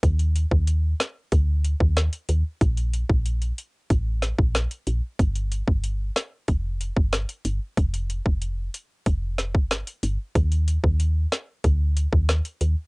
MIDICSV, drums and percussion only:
0, 0, Header, 1, 2, 480
1, 0, Start_track
1, 0, Tempo, 645161
1, 23, Time_signature, 4, 2, 24, 8
1, 9576, End_track
2, 0, Start_track
2, 0, Title_t, "Drums"
2, 23, Note_on_c, 9, 36, 115
2, 23, Note_on_c, 9, 42, 75
2, 97, Note_off_c, 9, 36, 0
2, 98, Note_off_c, 9, 42, 0
2, 144, Note_on_c, 9, 42, 55
2, 219, Note_off_c, 9, 42, 0
2, 265, Note_on_c, 9, 42, 67
2, 340, Note_off_c, 9, 42, 0
2, 383, Note_on_c, 9, 36, 91
2, 457, Note_off_c, 9, 36, 0
2, 502, Note_on_c, 9, 42, 73
2, 576, Note_off_c, 9, 42, 0
2, 744, Note_on_c, 9, 37, 86
2, 744, Note_on_c, 9, 38, 113
2, 745, Note_on_c, 9, 42, 86
2, 818, Note_off_c, 9, 37, 0
2, 819, Note_off_c, 9, 38, 0
2, 819, Note_off_c, 9, 42, 0
2, 982, Note_on_c, 9, 42, 67
2, 983, Note_on_c, 9, 36, 86
2, 1056, Note_off_c, 9, 42, 0
2, 1057, Note_off_c, 9, 36, 0
2, 1224, Note_on_c, 9, 42, 73
2, 1298, Note_off_c, 9, 42, 0
2, 1342, Note_on_c, 9, 36, 101
2, 1416, Note_off_c, 9, 36, 0
2, 1463, Note_on_c, 9, 42, 72
2, 1464, Note_on_c, 9, 37, 90
2, 1464, Note_on_c, 9, 38, 113
2, 1538, Note_off_c, 9, 42, 0
2, 1539, Note_off_c, 9, 37, 0
2, 1539, Note_off_c, 9, 38, 0
2, 1583, Note_on_c, 9, 42, 62
2, 1657, Note_off_c, 9, 42, 0
2, 1702, Note_on_c, 9, 42, 84
2, 1776, Note_off_c, 9, 42, 0
2, 1943, Note_on_c, 9, 36, 117
2, 1943, Note_on_c, 9, 42, 74
2, 2017, Note_off_c, 9, 36, 0
2, 2017, Note_off_c, 9, 42, 0
2, 2064, Note_on_c, 9, 42, 57
2, 2138, Note_off_c, 9, 42, 0
2, 2184, Note_on_c, 9, 42, 67
2, 2258, Note_off_c, 9, 42, 0
2, 2303, Note_on_c, 9, 36, 97
2, 2377, Note_off_c, 9, 36, 0
2, 2423, Note_on_c, 9, 42, 71
2, 2497, Note_off_c, 9, 42, 0
2, 2542, Note_on_c, 9, 42, 47
2, 2617, Note_off_c, 9, 42, 0
2, 2664, Note_on_c, 9, 42, 85
2, 2739, Note_off_c, 9, 42, 0
2, 2902, Note_on_c, 9, 42, 67
2, 2903, Note_on_c, 9, 36, 93
2, 2977, Note_off_c, 9, 36, 0
2, 2977, Note_off_c, 9, 42, 0
2, 3141, Note_on_c, 9, 38, 67
2, 3144, Note_on_c, 9, 42, 75
2, 3215, Note_off_c, 9, 38, 0
2, 3219, Note_off_c, 9, 42, 0
2, 3262, Note_on_c, 9, 36, 100
2, 3336, Note_off_c, 9, 36, 0
2, 3383, Note_on_c, 9, 42, 76
2, 3384, Note_on_c, 9, 37, 93
2, 3384, Note_on_c, 9, 38, 111
2, 3457, Note_off_c, 9, 42, 0
2, 3459, Note_off_c, 9, 37, 0
2, 3459, Note_off_c, 9, 38, 0
2, 3504, Note_on_c, 9, 42, 58
2, 3579, Note_off_c, 9, 42, 0
2, 3622, Note_on_c, 9, 42, 81
2, 3696, Note_off_c, 9, 42, 0
2, 3863, Note_on_c, 9, 36, 117
2, 3864, Note_on_c, 9, 42, 74
2, 3938, Note_off_c, 9, 36, 0
2, 3938, Note_off_c, 9, 42, 0
2, 3984, Note_on_c, 9, 42, 60
2, 4058, Note_off_c, 9, 42, 0
2, 4105, Note_on_c, 9, 42, 64
2, 4179, Note_off_c, 9, 42, 0
2, 4223, Note_on_c, 9, 36, 93
2, 4297, Note_off_c, 9, 36, 0
2, 4342, Note_on_c, 9, 42, 74
2, 4417, Note_off_c, 9, 42, 0
2, 4583, Note_on_c, 9, 37, 87
2, 4584, Note_on_c, 9, 38, 110
2, 4584, Note_on_c, 9, 42, 85
2, 4658, Note_off_c, 9, 37, 0
2, 4658, Note_off_c, 9, 38, 0
2, 4658, Note_off_c, 9, 42, 0
2, 4821, Note_on_c, 9, 42, 68
2, 4823, Note_on_c, 9, 36, 93
2, 4896, Note_off_c, 9, 42, 0
2, 4897, Note_off_c, 9, 36, 0
2, 5064, Note_on_c, 9, 42, 73
2, 5139, Note_off_c, 9, 42, 0
2, 5182, Note_on_c, 9, 36, 104
2, 5257, Note_off_c, 9, 36, 0
2, 5302, Note_on_c, 9, 42, 72
2, 5303, Note_on_c, 9, 37, 89
2, 5303, Note_on_c, 9, 38, 109
2, 5377, Note_off_c, 9, 42, 0
2, 5378, Note_off_c, 9, 37, 0
2, 5378, Note_off_c, 9, 38, 0
2, 5424, Note_on_c, 9, 42, 58
2, 5498, Note_off_c, 9, 42, 0
2, 5542, Note_on_c, 9, 42, 81
2, 5616, Note_off_c, 9, 42, 0
2, 5783, Note_on_c, 9, 36, 118
2, 5784, Note_on_c, 9, 42, 75
2, 5858, Note_off_c, 9, 36, 0
2, 5858, Note_off_c, 9, 42, 0
2, 5905, Note_on_c, 9, 42, 59
2, 5980, Note_off_c, 9, 42, 0
2, 6025, Note_on_c, 9, 42, 62
2, 6099, Note_off_c, 9, 42, 0
2, 6143, Note_on_c, 9, 36, 95
2, 6217, Note_off_c, 9, 36, 0
2, 6262, Note_on_c, 9, 42, 70
2, 6336, Note_off_c, 9, 42, 0
2, 6504, Note_on_c, 9, 42, 84
2, 6578, Note_off_c, 9, 42, 0
2, 6742, Note_on_c, 9, 42, 68
2, 6743, Note_on_c, 9, 36, 92
2, 6816, Note_off_c, 9, 42, 0
2, 6817, Note_off_c, 9, 36, 0
2, 6981, Note_on_c, 9, 38, 68
2, 6984, Note_on_c, 9, 42, 71
2, 7055, Note_off_c, 9, 38, 0
2, 7058, Note_off_c, 9, 42, 0
2, 7102, Note_on_c, 9, 36, 103
2, 7176, Note_off_c, 9, 36, 0
2, 7223, Note_on_c, 9, 42, 69
2, 7224, Note_on_c, 9, 37, 91
2, 7224, Note_on_c, 9, 38, 111
2, 7297, Note_off_c, 9, 42, 0
2, 7298, Note_off_c, 9, 37, 0
2, 7298, Note_off_c, 9, 38, 0
2, 7344, Note_on_c, 9, 42, 58
2, 7419, Note_off_c, 9, 42, 0
2, 7463, Note_on_c, 9, 42, 82
2, 7537, Note_off_c, 9, 42, 0
2, 7703, Note_on_c, 9, 36, 121
2, 7703, Note_on_c, 9, 42, 74
2, 7777, Note_off_c, 9, 36, 0
2, 7778, Note_off_c, 9, 42, 0
2, 7825, Note_on_c, 9, 42, 59
2, 7899, Note_off_c, 9, 42, 0
2, 7944, Note_on_c, 9, 42, 68
2, 8018, Note_off_c, 9, 42, 0
2, 8063, Note_on_c, 9, 36, 95
2, 8137, Note_off_c, 9, 36, 0
2, 8182, Note_on_c, 9, 42, 73
2, 8256, Note_off_c, 9, 42, 0
2, 8423, Note_on_c, 9, 37, 90
2, 8423, Note_on_c, 9, 38, 110
2, 8424, Note_on_c, 9, 42, 85
2, 8497, Note_off_c, 9, 37, 0
2, 8498, Note_off_c, 9, 38, 0
2, 8498, Note_off_c, 9, 42, 0
2, 8661, Note_on_c, 9, 42, 70
2, 8662, Note_on_c, 9, 36, 89
2, 8735, Note_off_c, 9, 42, 0
2, 8737, Note_off_c, 9, 36, 0
2, 8903, Note_on_c, 9, 42, 76
2, 8978, Note_off_c, 9, 42, 0
2, 9022, Note_on_c, 9, 36, 98
2, 9096, Note_off_c, 9, 36, 0
2, 9142, Note_on_c, 9, 42, 75
2, 9143, Note_on_c, 9, 37, 87
2, 9144, Note_on_c, 9, 38, 115
2, 9217, Note_off_c, 9, 37, 0
2, 9217, Note_off_c, 9, 42, 0
2, 9218, Note_off_c, 9, 38, 0
2, 9263, Note_on_c, 9, 42, 59
2, 9338, Note_off_c, 9, 42, 0
2, 9381, Note_on_c, 9, 42, 84
2, 9455, Note_off_c, 9, 42, 0
2, 9576, End_track
0, 0, End_of_file